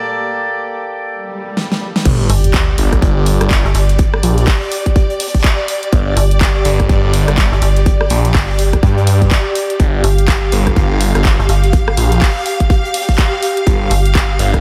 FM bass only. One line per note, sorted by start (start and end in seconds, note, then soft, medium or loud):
2.30 2.76 G1 loud
3.65 3.73 G1 loud
3.75 4.22 G1 loud
6.17 6.64 G1 loud
7.52 7.60 G1 loud
7.62 8.09 G1 loud
8.35 8.81 G1 loud
10.04 10.51 G1 loud
11.39 11.47 G1 loud
11.49 11.96 G1 loud
13.91 14.38 G1 medium